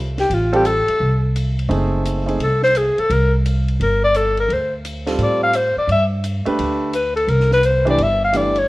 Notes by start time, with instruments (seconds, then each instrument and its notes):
Already playing: upright bass C2
0.18 alto saxophone G4, snare, ride
0.30 upright bass A1, alto saxophone F4, ride
0.53 grand piano G3 C4 F4 A4, alto saxophone G4, ride
0.65 alto saxophone A4, hi-hat pedal, ride
0.88 muted upright bass stroke, ride
1.00 upright bass C2
1.36 hi-hat pedal, ride
1.59 ride
1.69 upright bass F#1, grand piano A3 C4 D#4 G#4, ride
2.05 hi-hat pedal, ride
2.26 grand piano A3 C4 D#4 G#4, ride
2.38 upright bass C2, ride
2.43 alto saxophone A4
2.62 alto saxophone C5, snare
2.75 alto saxophone G#4, hi-hat pedal, ride
2.98 alto saxophone A4, muted upright bass stroke, ride
3.10 upright bass C2, alto saxophone A#4, ride
3.46 hi-hat pedal, ride
3.68 ride
3.80 upright bass G1, alto saxophone A#4, ride
4.04 alto saxophone D5
4.14 alto saxophone A4, hi-hat pedal, ride
4.37 alto saxophone A#4, ride
4.49 upright bass D2, ride
4.53 alto saxophone C5
4.85 hi-hat pedal, ride
5.07 grand piano G3 C4 F4 A4, snare, ride
5.18 upright bass A2, ride
5.23 alto saxophone D5
5.43 alto saxophone F5
5.53 alto saxophone C5, hi-hat pedal, ride
5.76 alto saxophone D5, muted upright bass stroke
5.87 upright bass G2, ride
5.92 alto saxophone E5
6.24 hi-hat pedal, ride
6.46 grand piano A3 D4 G4 B4, muted upright bass stroke, ride
6.59 upright bass D2, ride
6.93 alto saxophone B4, hi-hat pedal, ride
7.16 alto saxophone A4, ride
7.28 upright bass C2, alto saxophone A#4, ride
7.40 snare
7.51 alto saxophone B4, snare
7.63 alto saxophone C5, hi-hat pedal, ride
7.85 grand piano E3 A3 D4 G4, ride
7.90 alto saxophone D5
7.98 upright bass G1, ride
8.02 alto saxophone E5
8.24 alto saxophone F5
8.33 grand piano E3 A3 D4 G4, alto saxophone D5, hi-hat pedal, ride
8.55 alto saxophone C#5, ride